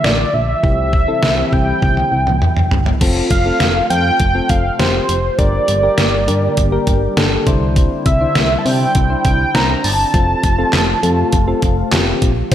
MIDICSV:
0, 0, Header, 1, 6, 480
1, 0, Start_track
1, 0, Tempo, 594059
1, 513, Time_signature, 4, 2, 24, 8
1, 10139, End_track
2, 0, Start_track
2, 0, Title_t, "Analog synth lead"
2, 0, Program_c, 0, 81
2, 33, Note_on_c, 0, 74, 89
2, 274, Note_on_c, 0, 76, 89
2, 286, Note_off_c, 0, 74, 0
2, 509, Note_off_c, 0, 76, 0
2, 514, Note_on_c, 0, 76, 101
2, 1234, Note_on_c, 0, 79, 115
2, 1246, Note_off_c, 0, 76, 0
2, 2193, Note_off_c, 0, 79, 0
2, 2673, Note_on_c, 0, 77, 111
2, 3121, Note_off_c, 0, 77, 0
2, 3153, Note_on_c, 0, 79, 120
2, 3633, Note_on_c, 0, 77, 104
2, 3645, Note_off_c, 0, 79, 0
2, 3873, Note_on_c, 0, 72, 99
2, 3885, Note_off_c, 0, 77, 0
2, 4352, Note_on_c, 0, 74, 95
2, 4364, Note_off_c, 0, 72, 0
2, 5792, Note_off_c, 0, 74, 0
2, 6513, Note_on_c, 0, 76, 97
2, 6936, Note_on_c, 0, 81, 79
2, 6948, Note_off_c, 0, 76, 0
2, 6993, Note_on_c, 0, 79, 112
2, 7005, Note_off_c, 0, 81, 0
2, 7468, Note_off_c, 0, 79, 0
2, 7473, Note_on_c, 0, 79, 106
2, 7714, Note_on_c, 0, 82, 112
2, 7726, Note_off_c, 0, 79, 0
2, 7953, Note_on_c, 0, 81, 106
2, 7965, Note_off_c, 0, 82, 0
2, 9633, Note_off_c, 0, 81, 0
2, 10113, Note_on_c, 0, 72, 90
2, 10139, Note_off_c, 0, 72, 0
2, 10139, End_track
3, 0, Start_track
3, 0, Title_t, "Synth keys"
3, 0, Program_c, 1, 88
3, 513, Note_on_c, 1, 60, 72
3, 513, Note_on_c, 1, 64, 69
3, 513, Note_on_c, 1, 67, 81
3, 741, Note_off_c, 1, 60, 0
3, 741, Note_off_c, 1, 64, 0
3, 741, Note_off_c, 1, 67, 0
3, 873, Note_on_c, 1, 60, 74
3, 873, Note_on_c, 1, 64, 67
3, 873, Note_on_c, 1, 69, 80
3, 1025, Note_off_c, 1, 60, 0
3, 1025, Note_off_c, 1, 64, 0
3, 1025, Note_off_c, 1, 69, 0
3, 1113, Note_on_c, 1, 60, 75
3, 1113, Note_on_c, 1, 64, 66
3, 1113, Note_on_c, 1, 67, 79
3, 1721, Note_off_c, 1, 60, 0
3, 1721, Note_off_c, 1, 64, 0
3, 1721, Note_off_c, 1, 67, 0
3, 2432, Note_on_c, 1, 60, 84
3, 2432, Note_on_c, 1, 65, 81
3, 2432, Note_on_c, 1, 69, 96
3, 2661, Note_off_c, 1, 60, 0
3, 2661, Note_off_c, 1, 65, 0
3, 2661, Note_off_c, 1, 69, 0
3, 2792, Note_on_c, 1, 60, 71
3, 2793, Note_on_c, 1, 65, 67
3, 2793, Note_on_c, 1, 69, 79
3, 3021, Note_off_c, 1, 60, 0
3, 3021, Note_off_c, 1, 65, 0
3, 3021, Note_off_c, 1, 69, 0
3, 3152, Note_on_c, 1, 65, 66
3, 3153, Note_on_c, 1, 60, 75
3, 3153, Note_on_c, 1, 69, 83
3, 3381, Note_off_c, 1, 60, 0
3, 3381, Note_off_c, 1, 65, 0
3, 3381, Note_off_c, 1, 69, 0
3, 3513, Note_on_c, 1, 60, 71
3, 3513, Note_on_c, 1, 65, 65
3, 3513, Note_on_c, 1, 69, 78
3, 3741, Note_off_c, 1, 60, 0
3, 3741, Note_off_c, 1, 65, 0
3, 3741, Note_off_c, 1, 69, 0
3, 3872, Note_on_c, 1, 60, 74
3, 3872, Note_on_c, 1, 65, 68
3, 3872, Note_on_c, 1, 67, 79
3, 4177, Note_off_c, 1, 60, 0
3, 4177, Note_off_c, 1, 65, 0
3, 4177, Note_off_c, 1, 67, 0
3, 4352, Note_on_c, 1, 62, 71
3, 4352, Note_on_c, 1, 67, 69
3, 4352, Note_on_c, 1, 70, 82
3, 4581, Note_off_c, 1, 62, 0
3, 4581, Note_off_c, 1, 67, 0
3, 4581, Note_off_c, 1, 70, 0
3, 4712, Note_on_c, 1, 62, 74
3, 4712, Note_on_c, 1, 67, 68
3, 4712, Note_on_c, 1, 70, 84
3, 4940, Note_off_c, 1, 62, 0
3, 4940, Note_off_c, 1, 67, 0
3, 4940, Note_off_c, 1, 70, 0
3, 5072, Note_on_c, 1, 62, 90
3, 5072, Note_on_c, 1, 67, 80
3, 5072, Note_on_c, 1, 70, 100
3, 5300, Note_off_c, 1, 62, 0
3, 5300, Note_off_c, 1, 67, 0
3, 5301, Note_off_c, 1, 70, 0
3, 5432, Note_on_c, 1, 62, 87
3, 5432, Note_on_c, 1, 67, 82
3, 5432, Note_on_c, 1, 70, 97
3, 5660, Note_off_c, 1, 67, 0
3, 5660, Note_off_c, 1, 70, 0
3, 5661, Note_off_c, 1, 62, 0
3, 5792, Note_on_c, 1, 62, 88
3, 5792, Note_on_c, 1, 67, 81
3, 5792, Note_on_c, 1, 69, 97
3, 6023, Note_off_c, 1, 62, 0
3, 6032, Note_off_c, 1, 69, 0
3, 6032, Note_on_c, 1, 62, 91
3, 6032, Note_on_c, 1, 64, 82
3, 6032, Note_on_c, 1, 72, 99
3, 6033, Note_off_c, 1, 67, 0
3, 6512, Note_off_c, 1, 64, 0
3, 6512, Note_off_c, 1, 72, 0
3, 6513, Note_off_c, 1, 62, 0
3, 6632, Note_on_c, 1, 62, 76
3, 6632, Note_on_c, 1, 64, 67
3, 6632, Note_on_c, 1, 72, 81
3, 6861, Note_off_c, 1, 62, 0
3, 6861, Note_off_c, 1, 64, 0
3, 6861, Note_off_c, 1, 72, 0
3, 6993, Note_on_c, 1, 62, 75
3, 6993, Note_on_c, 1, 64, 70
3, 6993, Note_on_c, 1, 72, 83
3, 7221, Note_off_c, 1, 62, 0
3, 7221, Note_off_c, 1, 64, 0
3, 7221, Note_off_c, 1, 72, 0
3, 7352, Note_on_c, 1, 62, 76
3, 7352, Note_on_c, 1, 64, 68
3, 7352, Note_on_c, 1, 72, 82
3, 7581, Note_off_c, 1, 62, 0
3, 7581, Note_off_c, 1, 64, 0
3, 7581, Note_off_c, 1, 72, 0
3, 7712, Note_on_c, 1, 64, 67
3, 7713, Note_on_c, 1, 62, 74
3, 7713, Note_on_c, 1, 72, 79
3, 8017, Note_off_c, 1, 62, 0
3, 8017, Note_off_c, 1, 64, 0
3, 8017, Note_off_c, 1, 72, 0
3, 8192, Note_on_c, 1, 60, 74
3, 8192, Note_on_c, 1, 65, 70
3, 8192, Note_on_c, 1, 69, 81
3, 8421, Note_off_c, 1, 60, 0
3, 8421, Note_off_c, 1, 65, 0
3, 8421, Note_off_c, 1, 69, 0
3, 8552, Note_on_c, 1, 60, 87
3, 8552, Note_on_c, 1, 65, 83
3, 8552, Note_on_c, 1, 69, 101
3, 8781, Note_off_c, 1, 60, 0
3, 8781, Note_off_c, 1, 65, 0
3, 8781, Note_off_c, 1, 69, 0
3, 8912, Note_on_c, 1, 60, 89
3, 8912, Note_on_c, 1, 65, 83
3, 8912, Note_on_c, 1, 69, 102
3, 9141, Note_off_c, 1, 60, 0
3, 9141, Note_off_c, 1, 65, 0
3, 9141, Note_off_c, 1, 69, 0
3, 9272, Note_on_c, 1, 60, 91
3, 9272, Note_on_c, 1, 65, 80
3, 9272, Note_on_c, 1, 69, 97
3, 9501, Note_off_c, 1, 60, 0
3, 9501, Note_off_c, 1, 65, 0
3, 9501, Note_off_c, 1, 69, 0
3, 9633, Note_on_c, 1, 60, 89
3, 9633, Note_on_c, 1, 65, 85
3, 9633, Note_on_c, 1, 67, 98
3, 9937, Note_off_c, 1, 60, 0
3, 9937, Note_off_c, 1, 65, 0
3, 9937, Note_off_c, 1, 67, 0
3, 10113, Note_on_c, 1, 60, 77
3, 10113, Note_on_c, 1, 64, 69
3, 10113, Note_on_c, 1, 67, 82
3, 10139, Note_off_c, 1, 60, 0
3, 10139, Note_off_c, 1, 64, 0
3, 10139, Note_off_c, 1, 67, 0
3, 10139, End_track
4, 0, Start_track
4, 0, Title_t, "Analog synth pad"
4, 0, Program_c, 2, 89
4, 0, Note_on_c, 2, 50, 75
4, 0, Note_on_c, 2, 53, 70
4, 0, Note_on_c, 2, 57, 71
4, 0, Note_on_c, 2, 65, 87
4, 481, Note_off_c, 2, 53, 0
4, 481, Note_off_c, 2, 57, 0
4, 481, Note_off_c, 2, 65, 0
4, 493, Note_off_c, 2, 50, 0
4, 513, Note_on_c, 2, 48, 77
4, 513, Note_on_c, 2, 52, 71
4, 513, Note_on_c, 2, 55, 70
4, 513, Note_on_c, 2, 64, 83
4, 2414, Note_off_c, 2, 48, 0
4, 2414, Note_off_c, 2, 52, 0
4, 2414, Note_off_c, 2, 55, 0
4, 2414, Note_off_c, 2, 64, 0
4, 2433, Note_on_c, 2, 48, 77
4, 2433, Note_on_c, 2, 53, 68
4, 2433, Note_on_c, 2, 57, 70
4, 2434, Note_on_c, 2, 65, 86
4, 4334, Note_off_c, 2, 48, 0
4, 4334, Note_off_c, 2, 53, 0
4, 4334, Note_off_c, 2, 57, 0
4, 4334, Note_off_c, 2, 65, 0
4, 4351, Note_on_c, 2, 55, 70
4, 4351, Note_on_c, 2, 58, 70
4, 4352, Note_on_c, 2, 50, 76
4, 4352, Note_on_c, 2, 67, 82
4, 6015, Note_off_c, 2, 55, 0
4, 6015, Note_off_c, 2, 58, 0
4, 6016, Note_off_c, 2, 67, 0
4, 6033, Note_on_c, 2, 55, 71
4, 6033, Note_on_c, 2, 60, 73
4, 6033, Note_on_c, 2, 64, 89
4, 8160, Note_off_c, 2, 50, 0
4, 8171, Note_off_c, 2, 55, 0
4, 8171, Note_off_c, 2, 60, 0
4, 8171, Note_off_c, 2, 64, 0
4, 8193, Note_on_c, 2, 48, 79
4, 8193, Note_on_c, 2, 53, 68
4, 8193, Note_on_c, 2, 57, 69
4, 8193, Note_on_c, 2, 65, 85
4, 10093, Note_off_c, 2, 65, 0
4, 10094, Note_off_c, 2, 48, 0
4, 10094, Note_off_c, 2, 53, 0
4, 10094, Note_off_c, 2, 57, 0
4, 10113, Note_on_c, 2, 64, 86
4, 10114, Note_on_c, 2, 48, 79
4, 10114, Note_on_c, 2, 52, 73
4, 10114, Note_on_c, 2, 55, 73
4, 10139, Note_off_c, 2, 48, 0
4, 10139, Note_off_c, 2, 52, 0
4, 10139, Note_off_c, 2, 55, 0
4, 10139, Note_off_c, 2, 64, 0
4, 10139, End_track
5, 0, Start_track
5, 0, Title_t, "FM bass"
5, 0, Program_c, 3, 39
5, 32, Note_on_c, 3, 33, 95
5, 201, Note_off_c, 3, 33, 0
5, 273, Note_on_c, 3, 34, 93
5, 441, Note_off_c, 3, 34, 0
5, 513, Note_on_c, 3, 36, 105
5, 849, Note_off_c, 3, 36, 0
5, 993, Note_on_c, 3, 36, 101
5, 1161, Note_off_c, 3, 36, 0
5, 1233, Note_on_c, 3, 36, 103
5, 1401, Note_off_c, 3, 36, 0
5, 1474, Note_on_c, 3, 36, 96
5, 1642, Note_off_c, 3, 36, 0
5, 1713, Note_on_c, 3, 36, 100
5, 1953, Note_on_c, 3, 40, 95
5, 1965, Note_off_c, 3, 36, 0
5, 2121, Note_off_c, 3, 40, 0
5, 2193, Note_on_c, 3, 31, 96
5, 2361, Note_off_c, 3, 31, 0
5, 2433, Note_on_c, 3, 29, 104
5, 2601, Note_off_c, 3, 29, 0
5, 2672, Note_on_c, 3, 29, 105
5, 2840, Note_off_c, 3, 29, 0
5, 2913, Note_on_c, 3, 29, 104
5, 3081, Note_off_c, 3, 29, 0
5, 3153, Note_on_c, 3, 41, 102
5, 3321, Note_off_c, 3, 41, 0
5, 3394, Note_on_c, 3, 29, 104
5, 3561, Note_off_c, 3, 29, 0
5, 3633, Note_on_c, 3, 29, 93
5, 3801, Note_off_c, 3, 29, 0
5, 3873, Note_on_c, 3, 29, 100
5, 4041, Note_off_c, 3, 29, 0
5, 4113, Note_on_c, 3, 29, 88
5, 4281, Note_off_c, 3, 29, 0
5, 4352, Note_on_c, 3, 31, 108
5, 4521, Note_off_c, 3, 31, 0
5, 4593, Note_on_c, 3, 31, 97
5, 4761, Note_off_c, 3, 31, 0
5, 4832, Note_on_c, 3, 31, 99
5, 5073, Note_on_c, 3, 43, 98
5, 5085, Note_off_c, 3, 31, 0
5, 5241, Note_off_c, 3, 43, 0
5, 5313, Note_on_c, 3, 31, 96
5, 5481, Note_off_c, 3, 31, 0
5, 5553, Note_on_c, 3, 31, 106
5, 5721, Note_off_c, 3, 31, 0
5, 5793, Note_on_c, 3, 31, 102
5, 5961, Note_off_c, 3, 31, 0
5, 6033, Note_on_c, 3, 36, 101
5, 6369, Note_off_c, 3, 36, 0
5, 6512, Note_on_c, 3, 36, 104
5, 6680, Note_off_c, 3, 36, 0
5, 6754, Note_on_c, 3, 36, 92
5, 6921, Note_off_c, 3, 36, 0
5, 6993, Note_on_c, 3, 48, 105
5, 7161, Note_off_c, 3, 48, 0
5, 7234, Note_on_c, 3, 36, 100
5, 7401, Note_off_c, 3, 36, 0
5, 7474, Note_on_c, 3, 36, 105
5, 7641, Note_off_c, 3, 36, 0
5, 7713, Note_on_c, 3, 36, 103
5, 7881, Note_off_c, 3, 36, 0
5, 7953, Note_on_c, 3, 31, 98
5, 8121, Note_off_c, 3, 31, 0
5, 8193, Note_on_c, 3, 29, 109
5, 8361, Note_off_c, 3, 29, 0
5, 8432, Note_on_c, 3, 29, 94
5, 8600, Note_off_c, 3, 29, 0
5, 8673, Note_on_c, 3, 29, 96
5, 8841, Note_off_c, 3, 29, 0
5, 8913, Note_on_c, 3, 41, 102
5, 9081, Note_off_c, 3, 41, 0
5, 9154, Note_on_c, 3, 29, 99
5, 9321, Note_off_c, 3, 29, 0
5, 9393, Note_on_c, 3, 29, 109
5, 9561, Note_off_c, 3, 29, 0
5, 9633, Note_on_c, 3, 29, 103
5, 9801, Note_off_c, 3, 29, 0
5, 9874, Note_on_c, 3, 34, 96
5, 10042, Note_off_c, 3, 34, 0
5, 10113, Note_on_c, 3, 36, 112
5, 10139, Note_off_c, 3, 36, 0
5, 10139, End_track
6, 0, Start_track
6, 0, Title_t, "Drums"
6, 35, Note_on_c, 9, 38, 105
6, 116, Note_off_c, 9, 38, 0
6, 513, Note_on_c, 9, 36, 110
6, 594, Note_off_c, 9, 36, 0
6, 752, Note_on_c, 9, 36, 96
6, 833, Note_off_c, 9, 36, 0
6, 991, Note_on_c, 9, 38, 112
6, 1071, Note_off_c, 9, 38, 0
6, 1233, Note_on_c, 9, 36, 84
6, 1314, Note_off_c, 9, 36, 0
6, 1473, Note_on_c, 9, 48, 57
6, 1474, Note_on_c, 9, 36, 88
6, 1554, Note_off_c, 9, 48, 0
6, 1555, Note_off_c, 9, 36, 0
6, 1593, Note_on_c, 9, 48, 50
6, 1674, Note_off_c, 9, 48, 0
6, 1834, Note_on_c, 9, 47, 66
6, 1914, Note_off_c, 9, 47, 0
6, 1953, Note_on_c, 9, 45, 82
6, 2034, Note_off_c, 9, 45, 0
6, 2073, Note_on_c, 9, 45, 74
6, 2154, Note_off_c, 9, 45, 0
6, 2193, Note_on_c, 9, 43, 96
6, 2274, Note_off_c, 9, 43, 0
6, 2313, Note_on_c, 9, 43, 86
6, 2394, Note_off_c, 9, 43, 0
6, 2433, Note_on_c, 9, 36, 108
6, 2433, Note_on_c, 9, 42, 69
6, 2433, Note_on_c, 9, 49, 92
6, 2514, Note_off_c, 9, 36, 0
6, 2514, Note_off_c, 9, 42, 0
6, 2514, Note_off_c, 9, 49, 0
6, 2671, Note_on_c, 9, 42, 73
6, 2672, Note_on_c, 9, 36, 94
6, 2752, Note_off_c, 9, 36, 0
6, 2752, Note_off_c, 9, 42, 0
6, 2910, Note_on_c, 9, 38, 116
6, 2911, Note_on_c, 9, 42, 66
6, 2991, Note_off_c, 9, 38, 0
6, 2992, Note_off_c, 9, 42, 0
6, 3155, Note_on_c, 9, 42, 67
6, 3236, Note_off_c, 9, 42, 0
6, 3390, Note_on_c, 9, 42, 75
6, 3394, Note_on_c, 9, 36, 93
6, 3471, Note_off_c, 9, 42, 0
6, 3474, Note_off_c, 9, 36, 0
6, 3631, Note_on_c, 9, 42, 69
6, 3633, Note_on_c, 9, 36, 91
6, 3712, Note_off_c, 9, 42, 0
6, 3714, Note_off_c, 9, 36, 0
6, 3874, Note_on_c, 9, 42, 64
6, 3875, Note_on_c, 9, 38, 110
6, 3955, Note_off_c, 9, 42, 0
6, 3956, Note_off_c, 9, 38, 0
6, 4113, Note_on_c, 9, 42, 76
6, 4194, Note_off_c, 9, 42, 0
6, 4352, Note_on_c, 9, 42, 72
6, 4353, Note_on_c, 9, 36, 111
6, 4433, Note_off_c, 9, 36, 0
6, 4433, Note_off_c, 9, 42, 0
6, 4591, Note_on_c, 9, 42, 78
6, 4671, Note_off_c, 9, 42, 0
6, 4830, Note_on_c, 9, 38, 113
6, 4831, Note_on_c, 9, 42, 69
6, 4910, Note_off_c, 9, 38, 0
6, 4911, Note_off_c, 9, 42, 0
6, 5075, Note_on_c, 9, 42, 67
6, 5156, Note_off_c, 9, 42, 0
6, 5310, Note_on_c, 9, 42, 77
6, 5313, Note_on_c, 9, 36, 93
6, 5391, Note_off_c, 9, 42, 0
6, 5394, Note_off_c, 9, 36, 0
6, 5551, Note_on_c, 9, 42, 70
6, 5553, Note_on_c, 9, 36, 92
6, 5632, Note_off_c, 9, 42, 0
6, 5634, Note_off_c, 9, 36, 0
6, 5794, Note_on_c, 9, 42, 67
6, 5795, Note_on_c, 9, 38, 112
6, 5875, Note_off_c, 9, 38, 0
6, 5875, Note_off_c, 9, 42, 0
6, 6033, Note_on_c, 9, 36, 85
6, 6033, Note_on_c, 9, 42, 75
6, 6113, Note_off_c, 9, 42, 0
6, 6114, Note_off_c, 9, 36, 0
6, 6272, Note_on_c, 9, 42, 72
6, 6273, Note_on_c, 9, 36, 109
6, 6353, Note_off_c, 9, 36, 0
6, 6353, Note_off_c, 9, 42, 0
6, 6511, Note_on_c, 9, 36, 97
6, 6511, Note_on_c, 9, 42, 79
6, 6591, Note_off_c, 9, 42, 0
6, 6592, Note_off_c, 9, 36, 0
6, 6750, Note_on_c, 9, 38, 114
6, 6751, Note_on_c, 9, 42, 67
6, 6831, Note_off_c, 9, 38, 0
6, 6832, Note_off_c, 9, 42, 0
6, 6995, Note_on_c, 9, 46, 49
6, 7076, Note_off_c, 9, 46, 0
6, 7230, Note_on_c, 9, 42, 76
6, 7234, Note_on_c, 9, 36, 91
6, 7311, Note_off_c, 9, 42, 0
6, 7315, Note_off_c, 9, 36, 0
6, 7471, Note_on_c, 9, 42, 71
6, 7473, Note_on_c, 9, 36, 94
6, 7552, Note_off_c, 9, 42, 0
6, 7554, Note_off_c, 9, 36, 0
6, 7714, Note_on_c, 9, 42, 67
6, 7715, Note_on_c, 9, 38, 107
6, 7795, Note_off_c, 9, 42, 0
6, 7796, Note_off_c, 9, 38, 0
6, 7953, Note_on_c, 9, 46, 77
6, 8033, Note_off_c, 9, 46, 0
6, 8192, Note_on_c, 9, 42, 72
6, 8193, Note_on_c, 9, 36, 112
6, 8273, Note_off_c, 9, 42, 0
6, 8274, Note_off_c, 9, 36, 0
6, 8431, Note_on_c, 9, 42, 78
6, 8432, Note_on_c, 9, 36, 98
6, 8512, Note_off_c, 9, 36, 0
6, 8512, Note_off_c, 9, 42, 0
6, 8670, Note_on_c, 9, 38, 114
6, 8670, Note_on_c, 9, 39, 96
6, 8671, Note_on_c, 9, 42, 68
6, 8751, Note_off_c, 9, 38, 0
6, 8751, Note_off_c, 9, 39, 0
6, 8752, Note_off_c, 9, 42, 0
6, 8915, Note_on_c, 9, 42, 66
6, 8996, Note_off_c, 9, 42, 0
6, 9150, Note_on_c, 9, 42, 77
6, 9154, Note_on_c, 9, 36, 92
6, 9231, Note_off_c, 9, 42, 0
6, 9234, Note_off_c, 9, 36, 0
6, 9391, Note_on_c, 9, 42, 72
6, 9394, Note_on_c, 9, 36, 95
6, 9472, Note_off_c, 9, 42, 0
6, 9474, Note_off_c, 9, 36, 0
6, 9635, Note_on_c, 9, 38, 115
6, 9635, Note_on_c, 9, 39, 91
6, 9635, Note_on_c, 9, 42, 66
6, 9715, Note_off_c, 9, 42, 0
6, 9716, Note_off_c, 9, 38, 0
6, 9716, Note_off_c, 9, 39, 0
6, 9873, Note_on_c, 9, 42, 76
6, 9874, Note_on_c, 9, 36, 89
6, 9954, Note_off_c, 9, 42, 0
6, 9955, Note_off_c, 9, 36, 0
6, 10113, Note_on_c, 9, 36, 117
6, 10113, Note_on_c, 9, 42, 74
6, 10113, Note_on_c, 9, 49, 100
6, 10139, Note_off_c, 9, 36, 0
6, 10139, Note_off_c, 9, 42, 0
6, 10139, Note_off_c, 9, 49, 0
6, 10139, End_track
0, 0, End_of_file